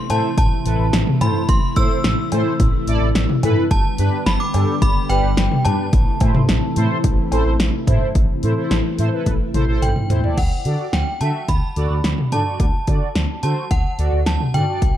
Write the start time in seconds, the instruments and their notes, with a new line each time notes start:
Already playing: string machine C3 E3 A3 E4, synth bell C6
0.10 analog synth bass A2, analog polysynth E4 A4 C5, synth bell A5, closed hi-hat, cowbell
0.38 analog synth bass A1, synth bell A5, kick, closed hi-hat
0.65 analog synth bass A1, analog polysynth E4 A4 B4, closed hi-hat
0.79 analog synth bass A1
0.93 analog synth bass A1, snare, closed hi-hat
1.07 mid tom
1.21 analog synth bass A2, analog polysynth E4 A4 C5, synth bell B5, closed hi-hat, mid tom, cowbell
1.49 analog synth bass A1, synth bell C6, kick, closed hi-hat
1.76 analog synth bass A2, analog polysynth E4 A4 C5, synth bell E6, kick, closed hi-hat
2.04 analog synth bass A1, snare, closed hi-hat
2.32 analog synth bass A2, analog polysynth E4 A4 C5, closed hi-hat, cowbell
2.60 analog synth bass A1, kick, closed hi-hat
2.87 analog synth bass A1, analog polysynth E4 A4 D5, closed hi-hat
3.02 analog synth bass A1
3.15 snare, closed hi-hat
3.29 mid tom
3.43 analog synth bass A2, analog polysynth E4 A4 B4, closed hi-hat, mid tom, cowbell
3.71 analog synth bass G1, string machine D3 G3 B3 G4, synth bell A5, kick, closed hi-hat
3.98 analog synth bass G2, analog polysynth D4 G4 B4, closed hi-hat
4.26 analog synth bass G1, synth bell B5, snare, closed hi-hat
4.40 synth bell D6
4.54 analog synth bass G2, analog polysynth D4 G4 A4, closed hi-hat, cowbell
4.82 analog synth bass G1, synth bell B5, kick, closed hi-hat
5.09 analog synth bass G1, analog polysynth D4 G4 B4, synth bell G5, closed hi-hat
5.24 analog synth bass G1
5.37 analog synth bass G1, snare, closed hi-hat
5.51 mid tom
5.65 analog synth bass G2, analog polysynth D4 G4 B4, synth bell A5, closed hi-hat, mid tom, cowbell
5.93 analog synth bass A1, string machine C3 E3 A3 E4, kick, closed hi-hat
6.20 analog synth bass A2, analog polysynth E4 A4 C5, kick, closed hi-hat, cowbell
6.35 mid tom
6.49 analog synth bass A1, snare, closed hi-hat
6.76 analog synth bass A2, analog polysynth E4 A4 C5, closed hi-hat
7.04 analog synth bass A1, kick, closed hi-hat
7.32 analog synth bass A1, analog polysynth E4 A4 C5, closed hi-hat, cowbell
7.46 analog synth bass A1
7.60 analog synth bass A1, snare, closed hi-hat
7.87 analog synth bass A2, analog polysynth E4 A4 C5, kick, closed hi-hat, mid tom
8.15 analog synth bass A1, string machine C3 E3 A3 E4, kick, closed hi-hat
8.43 analog synth bass A2, analog polysynth E4 A4 C5, closed hi-hat
8.57 analog polysynth E4 A4 C5
8.71 analog synth bass A1, snare, closed hi-hat
8.99 analog synth bass A2, analog polysynth E4 A4 C5, closed hi-hat
9.13 analog polysynth E4 A4 B4
9.26 analog synth bass A1, kick, closed hi-hat, high tom
9.54 analog synth bass A1, analog polysynth E4 A4 C5, closed hi-hat, mid tom
9.68 analog synth bass A1, analog polysynth E4 A4 C5
9.82 analog synth bass A1, synth bell G5, closed hi-hat, mid tom
9.96 mid tom
10.10 analog synth bass A2, analog polysynth E4 A4 C5, closed hi-hat, floor tom
10.24 analog polysynth E4 A4 D5, floor tom
10.37 analog synth bass D2, synth bell F#5, kick, closed hi-hat, crash
10.65 analog synth bass D3, analog polysynth F#4 A4 D5, closed hi-hat
10.93 analog synth bass D2, synth bell G5, snare, closed hi-hat
11.21 analog synth bass D3, analog polysynth F#4 A4 E5, synth bell A5, closed hi-hat
11.48 analog synth bass D2, synth bell B5, kick, closed hi-hat
11.76 analog synth bass D2, analog polysynth F#4 A4 D5, closed hi-hat
11.90 analog synth bass D2
12.04 analog synth bass D2, snare, closed hi-hat
12.18 mid tom
12.32 analog synth bass D3, analog polysynth F#4 A4 D5, synth bell A5, closed hi-hat, mid tom
12.46 analog polysynth F#4 A4 D5
12.60 analog synth bass D2, kick, closed hi-hat
12.87 analog synth bass D3, analog polysynth F#4 A4 D5, kick, closed hi-hat
13.15 analog synth bass D2, snare, closed hi-hat
13.43 analog synth bass D3, analog polysynth F#4 A4 C5, synth bell A5, closed hi-hat
13.71 analog synth bass D2, synth bell F#5, kick, closed hi-hat
13.99 analog synth bass D2, analog polysynth F#4 A4 D5, closed hi-hat
14.13 analog synth bass D2
14.26 analog synth bass D2, synth bell A5, snare, closed hi-hat
14.40 mid tom
14.54 analog synth bass D3, analog polysynth F#4 A4 D5, synth bell G5, closed hi-hat, mid tom
14.68 analog polysynth F#4 A4 D5
14.82 analog synth bass C2, kick, closed hi-hat